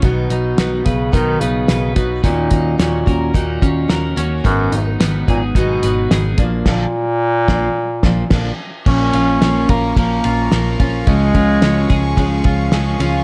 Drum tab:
CC |--------|--------|--------|x-----x-|
RD |--------|--------|--------|--------|
HH |xxxxxxxx|xxxxxxxx|xxxxxxxx|--------|
SD |--oo--o-|--o---o-|--o---o-|o--o-oo-|
BD |o--oo--o|oo-ooo--|o--oo--o|o--o-oo-|

CC |x-------|--------|
RD |-xxxxxxx|xxxxxxxx|
HH |--------|--------|
SD |--o---o-|--oo--o-|
BD |o--oo--o|oo-ooo--|